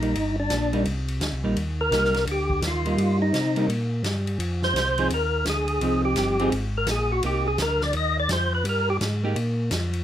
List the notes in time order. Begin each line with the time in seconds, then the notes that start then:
Already playing: A#1 D#4
0.02 G3 A#3 D#4, ride
0.15 G1, ride
0.40 D4
0.50 A#1, snare, hi-hat pedal, ride
0.73 G3 A#3 D#4, ride
0.85 C2, ride
1.08 ride
1.20 D2, snare, hi-hat pedal, ride
1.33 C2
1.44 A#1 G3 A#3 D#4
1.56 D#2, ride
1.81 A#4
1.91 C2 G3 A#3 D#4, snare, hi-hat pedal, ride
2.04 snare
2.14 snare, ride
2.26 D2, ride
2.31 G4
2.50 kick
2.62 D#2, snare, hi-hat pedal, ride
2.67 F4
2.85 G3 A#3 D#4, ride
2.97 G2, ride
3.22 D#4
3.33 C3, snare, hi-hat pedal, ride
3.56 G3 A#3 D#4, ride
3.68 A#2, ride
4.03 G2, snare, hi-hat pedal, ride
4.27 ride
4.39 F2, ride
4.62 C5, snare
4.73 C2, snare, hi-hat pedal, ride
4.98 F3 C4 D#4 G#4, ride
5.10 D#2 A#4, ride
5.45 D2, snare, hi-hat pedal, ride
5.50 G#4
5.68 ride
5.81 C2 F3 C4 D#4, ride
6.05 G4
6.16 G1, snare, hi-hat pedal, ride
6.39 F3 C4 D#4 G#4, ride
6.52 G#1, ride
6.78 A#4
6.87 A#1, snare, hi-hat pedal, ride
6.91 G#4
7.12 F#4
7.23 C2 A#3 D#4 G4, ride
7.48 G#4
7.58 D2 A#4, snare, hi-hat pedal, ride
7.81 D5, snare
7.93 D#2 D#5, ride
8.20 D5
8.29 F2 C5, snare, hi-hat pedal, ride
8.55 B4
8.64 G2, ride
8.69 A#4
8.90 G4
9.01 G#2, snare, hi-hat pedal, ride
9.24 A#3 D#4 G4
9.36 A#2, ride
9.71 F2, snare, hi-hat pedal, ride
9.93 ride